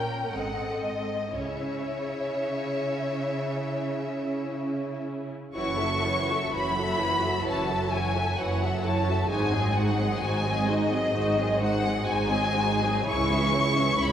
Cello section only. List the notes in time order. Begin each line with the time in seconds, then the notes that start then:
Already playing: A#2
0.34 G#2
1.34 C#3
5.56 F#2
6.54 F#2
7.46 F#2
8.38 F#2
9.29 G#2
10.22 G#2
11.16 G#2
12.08 G#2
13.08 C#2
13.99 C#2